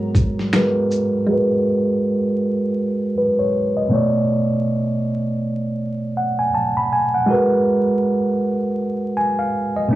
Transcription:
0.00 1.24 G#2 medium
0.00 1.24 F#3 medium
0.00 0.48 G#3 medium
0.00 1.24 B3 medium
0.00 0.49 F#4 medium
0.00 0.51 A#4 medium
0.00 0.52 C#5 medium
0.00 1.24 A#5 medium
0.15 kick medium
0.15 closed hi-hat soft
0.15 shaker soft
0.39 snare soft
0.53 1.25 G#3 medium
0.53 1.27 F#4 soft
0.53 1.30 A#4 medium
0.53 1.30 B4 medium
0.53 finger snap medium
0.53 snare loud
0.53 closed hi-hat medium
0.91 shaker soft
1.26 3.86 G#3 medium
1.26 3.87 F#4 medium
1.31 3.13 A#4 medium
1.31 3.14 B4 medium
3.18 3.38 B4 medium
3.39 3.74 C#5 medium
3.77 4.12 D#5 medium
3.89 6.48 B2 medium
3.89 6.49 A3 medium
3.93 6.50 C#5 medium
3.93 6.52 D5 medium
6.17 6.37 F#5 medium
6.39 6.53 G#5 medium
6.54 6.75 A5 medium
6.77 6.91 B5 medium
6.93 7.12 G#5 medium
7.14 7.49 F#5 medium
7.26 9.86 G#3 medium
7.26 9.87 F#4 medium
7.31 9.88 A#4 medium
7.31 9.89 B4 medium
9.17 9.37 G#5 medium
9.39 9.74 F5 medium
9.76 9.95 D#5 medium
9.88 9.95 B2 medium
9.88 9.95 A3 medium

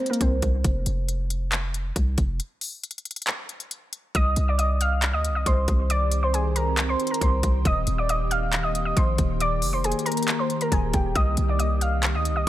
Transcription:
0.06 0.19 A#4 medium
0.06 closed hi-hat medium
0.11 0.19 A#3 medium
0.11 closed hi-hat medium
0.21 0.42 C2 loud
0.21 0.62 C4 medium
0.21 0.62 C5 medium
0.21 kick loud
0.21 closed hi-hat medium
0.42 0.64 C2 loud
0.42 kick loud
0.42 closed hi-hat medium
0.64 0.86 F1 loud
0.64 kick loud
0.64 closed hi-hat medium
0.86 1.92 F1 loud
0.86 closed hi-hat medium
1.09 closed hi-hat medium
1.30 closed hi-hat medium
1.52 clap loud
1.52 closed hi-hat medium
1.74 closed hi-hat medium
1.96 2.17 C2 loud
1.96 kick loud
1.96 closed hi-hat medium
2.18 2.40 F1 loud
2.18 kick loud
2.18 closed hi-hat medium
2.40 closed hi-hat medium
2.61 open hi-hat medium
2.84 closed hi-hat medium
2.91 closed hi-hat medium
2.98 closed hi-hat soft
3.05 closed hi-hat medium
3.11 closed hi-hat medium
3.16 closed hi-hat medium
3.22 closed hi-hat medium
3.27 clap loud
3.27 closed hi-hat medium
3.49 closed hi-hat soft
3.60 closed hi-hat medium
3.71 closed hi-hat medium
3.93 closed hi-hat medium
4.15 4.36 C2 loud
4.15 12.49 D#3 medium
4.15 7.62 C4 medium
4.15 12.49 G4 medium
4.15 4.46 D#5 medium
4.15 4.46 D#6 loud
4.15 kick loud
4.15 closed hi-hat medium
4.36 5.15 C2 loud
4.36 closed hi-hat medium
4.48 4.57 D5 medium
4.48 4.57 D6 medium
4.58 4.77 D#5 medium
4.58 4.76 D#6 medium
4.58 closed hi-hat medium
4.81 5.12 F5 medium
4.81 5.12 F6 medium
4.81 closed hi-hat medium
5.02 clap loud
5.02 closed hi-hat medium
5.13 5.31 D2 loud
5.13 5.32 D#5 medium
5.13 5.31 D#6 medium
5.25 closed hi-hat medium
5.30 5.45 C2 loud
5.35 5.45 D#5 medium
5.35 5.44 D#6 medium
5.46 5.67 C2 loud
5.46 5.88 C5 medium
5.46 5.87 C6 medium
5.46 kick loud
5.46 closed hi-hat medium
5.68 6.96 C2 loud
5.68 kick loud
5.68 closed hi-hat medium
5.90 6.21 D5 medium
5.90 6.21 D6 loud
5.90 closed hi-hat medium
6.12 closed hi-hat medium
6.23 6.32 C5 medium
6.23 6.32 C6 medium
6.34 6.52 G#4 medium
6.34 6.52 G#5 medium
6.34 closed hi-hat medium
6.56 6.87 A#4 medium
6.56 6.87 A#5 medium
6.56 closed hi-hat medium
6.77 clap loud
6.77 closed hi-hat medium
6.89 7.07 C5 medium
6.89 7.07 C6 medium
7.00 closed hi-hat soft
7.07 7.19 A#5 medium
7.07 closed hi-hat medium
7.11 7.20 A#4 medium
7.11 closed hi-hat medium
7.21 7.42 C2 loud
7.21 7.63 C5 medium
7.21 7.62 C6 medium
7.21 kick loud
7.21 closed hi-hat medium
7.43 7.64 C2 loud
7.43 kick loud
7.43 closed hi-hat medium
7.65 7.86 D#1 loud
7.65 11.12 A#3 medium
7.65 7.97 D#5 medium
7.65 7.96 D#6 loud
7.65 kick loud
7.65 closed hi-hat medium
7.87 8.93 D#1 loud
7.87 closed hi-hat medium
7.98 8.08 D5 medium
7.98 8.07 D6 medium
8.09 8.28 D#5 medium
8.09 8.27 D#6 medium
8.09 closed hi-hat medium
8.31 8.62 F5 medium
8.31 8.62 F6 medium
8.31 closed hi-hat medium
8.52 clap loud
8.52 closed hi-hat medium
8.63 8.82 D#5 medium
8.63 8.81 D#6 medium
8.75 closed hi-hat medium
8.85 8.95 D#5 medium
8.85 8.94 D#6 medium
8.97 9.18 A#1 loud
8.97 9.38 C5 medium
8.97 9.38 C6 medium
8.97 kick loud
8.97 closed hi-hat medium
9.18 9.64 D#1 loud
9.18 kick loud
9.18 closed hi-hat medium
9.40 9.72 D5 medium
9.40 9.71 D6 loud
9.40 closed hi-hat medium
9.62 9.94 F1 loud
9.62 open hi-hat medium
9.73 9.83 C5 medium
9.73 9.82 C6 medium
9.84 10.03 G#4 medium
9.84 10.02 G#5 medium
9.84 closed hi-hat medium
9.92 closed hi-hat medium
9.99 closed hi-hat soft
10.06 10.37 A#4 medium
10.06 10.37 A#5 medium
10.06 closed hi-hat medium
10.12 closed hi-hat medium
10.17 closed hi-hat medium
10.23 closed hi-hat medium
10.28 clap loud
10.28 closed hi-hat medium
10.39 10.58 C5 medium
10.39 10.57 C6 medium
10.50 closed hi-hat medium
10.61 10.71 A#4 medium
10.61 10.70 A#5 medium
10.61 closed hi-hat medium
10.72 10.93 D#1 loud
10.72 10.90 G#4 medium
10.72 10.90 G#5 medium
10.72 kick loud
10.72 closed hi-hat loud
10.94 11.15 D#1 loud
10.94 11.12 G4 medium
10.94 11.12 G5 medium
10.94 kick loud
10.94 closed hi-hat medium
11.15 11.37 C2 loud
11.15 12.49 C4 medium
11.15 11.47 D#5 medium
11.15 11.46 D#6 loud
11.15 kick loud
11.15 closed hi-hat medium
11.37 12.16 C2 loud
11.37 closed hi-hat medium
11.49 11.58 D5 medium
11.49 11.58 D6 medium
11.59 11.78 D#5 medium
11.59 11.77 D#6 medium
11.59 closed hi-hat medium
11.81 12.12 F5 medium
11.81 12.12 F6 medium
11.81 closed hi-hat medium
12.03 clap loud
12.03 closed hi-hat medium
12.14 12.32 D2 loud
12.14 12.33 D#5 medium
12.14 12.32 D#6 medium
12.25 closed hi-hat medium
12.31 12.46 C2 loud
12.36 12.45 D#5 medium
12.36 12.45 D#6 medium

